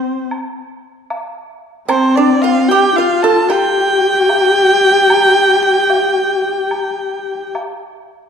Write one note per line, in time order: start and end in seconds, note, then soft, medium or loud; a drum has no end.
0.00 0.27 C4 medium
0.00 0.29 C5 medium
0.31 high woodblock soft
1.10 high woodblock soft
1.10 low woodblock soft
1.89 2.13 C4 medium
1.89 2.70 C4 medium
1.89 2.17 C5 medium
1.89 high woodblock medium
2.16 2.41 D4 medium
2.16 2.43 D5 medium
2.42 2.68 F4 medium
2.42 2.70 F5 medium
2.68 2.95 G4 medium
2.68 2.98 G5 medium
2.96 3.50 F4 medium
2.96 3.22 F4 medium
2.96 3.24 F5 medium
3.23 3.48 A4 medium
3.23 3.51 A5 loud
3.49 4.23 F4 medium
3.49 7.55 G4 medium
3.49 7.55 G5 loud
3.49 high woodblock soft
4.23 4.68 F#4 medium
4.29 high woodblock soft
4.29 low woodblock soft
4.68 7.51 G4 medium
5.10 high woodblock medium
5.90 low woodblock soft
6.71 high woodblock soft
7.55 high woodblock soft
7.55 low woodblock soft